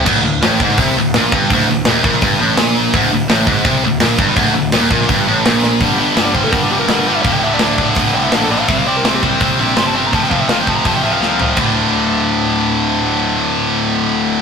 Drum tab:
CC |x---------------|----------------|----------------|----------------|
HH |----o---o---o---|o---o---o---o---|o---o---o---o---|o---o---o---o---|
SD |----o--o----o---|-o--o--o----o---|----o-------o---|-o--o--o----o-o-|
FT |----------------|----------------|----------------|----------------|
BD |o-----o-o-----o-|o-----o-o-------|o-----o-o-----o-|o-----o-o-------|

CC |----------------|----------------|----------------|----------------|
HH |o---o---o---o---|o---o---o---o---|o---o---o---o---|o---o---o-------|
SD |----o--o----o---|----o-------o---|----o-------o---|-o--o-------o---|
FT |----------------|----------------|----------------|--------------o-|
BD |o-----o-o-------|o-----o-o-------|o-----o-o-------|o-o---o-o-------|

CC |x---------------|----------------|
HH |----------------|----------------|
SD |----------------|----------------|
FT |----------------|----------------|
BD |o---------------|----------------|